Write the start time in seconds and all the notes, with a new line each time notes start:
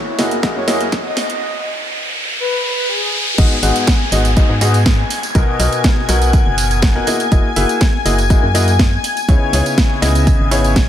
Already playing: E4 A#4 D#5 F#5 F#6, riser
0.11 G#5
0.18 F#1 A#3 E4 F#4 G#4 D#5, snare, open hi-hat
0.31 closed hi-hat
0.43 A#3 E4 F#4 G#4 D#5, kick, snare, closed hi-hat
0.56 F#2 C#5
0.68 A#3 E4 F#4 G#4 D#5, snare, open hi-hat
0.81 closed hi-hat
0.92 kick, snare, closed hi-hat
1.05 D#5
1.17 snare, open hi-hat
1.30 closed hi-hat
2.40 B4
2.64 B4
2.89 G#4
3.38 G#1 G#2 B3 D#4 F#4 G#4 D#5 G#5 G#6, kick, closed hi-hat, crash, tambourine, downlifter
3.63 G#1 G#2 B3 D#4 F#4 G#4 F#5, open hi-hat, tambourine
3.76 closed hi-hat, tambourine
3.87 kick, snare, closed hi-hat, tambourine
4.12 G#1 G#2 B3 D#4 F#4 G#4 D#5, open hi-hat, tambourine
4.25 closed hi-hat, tambourine
4.37 G#2 B3 D#4 F#4 G#4 D#5, kick, closed hi-hat, tambourine
4.49 G#2
4.61 G#2 B3 D#4 F#4 G#4 D#5, open hi-hat, tambourine
4.74 closed hi-hat, tambourine
4.86 kick, snare, closed hi-hat, tambourine
5.10 open hi-hat, tambourine
5.23 closed hi-hat, tambourine
5.35 B1 B2 B3 D#4 F#4 A#4 D#5, kick, closed hi-hat, tambourine
5.59 B1 B2 B3 D#4 F#4 A#4 D#5, open hi-hat, tambourine
5.73 closed hi-hat, tambourine
5.84 kick, snare, closed hi-hat, tambourine
6.09 B1 B2 B3 D#4 F#4 A#4 F#5, open hi-hat, tambourine
6.22 closed hi-hat, tambourine
6.33 kick, closed hi-hat, tambourine
6.46 F#1
6.58 open hi-hat, tambourine
6.71 closed hi-hat, tambourine
6.82 kick, snare, closed hi-hat, tambourine
6.96 B3 D#4 F#4 A#4 F#5
7.07 A#3 E4 F#4 G#4 D#5, open hi-hat, tambourine
7.20 closed hi-hat, tambourine
7.32 F#1 A#3 E4 F#4 G#4 D#5, kick, closed hi-hat, tambourine
7.56 F#1 A#3 E4 F#4 G#4 E5, open hi-hat, tambourine
7.69 closed hi-hat, tambourine
7.81 kick, snare, closed hi-hat, tambourine
8.05 F#1 A#3 E4 F#4 G#4 D#5, open hi-hat, tambourine
8.19 closed hi-hat, tambourine
8.30 A#3 E4 F#4 G#4 D#5, kick, closed hi-hat, tambourine
8.43 F#2
8.55 A#3 E4 F#4 G#4 D#5, open hi-hat, tambourine
8.68 closed hi-hat, tambourine
8.79 kick, snare, closed hi-hat, tambourine
9.04 open hi-hat, tambourine
9.17 closed hi-hat, tambourine
9.28 C#2 C#3 B3 D#4 E4 G#4 C#5, kick, closed hi-hat, tambourine
9.53 C#2 C#3 B3 D#4 E4 G#4 C#5, open hi-hat, tambourine
9.66 closed hi-hat, tambourine
9.78 kick, snare, closed hi-hat, tambourine
10.02 C#2 C#3 B3 D#4 E4 G#4 D#5, snare, open hi-hat, tambourine
10.15 closed hi-hat, tambourine
10.27 kick, closed hi-hat, tambourine
10.40 G#1
10.51 C#3 B3 D#4 E4 G#4 C#5, open hi-hat, tambourine
10.64 closed hi-hat, tambourine
10.76 kick, snare, closed hi-hat, tambourine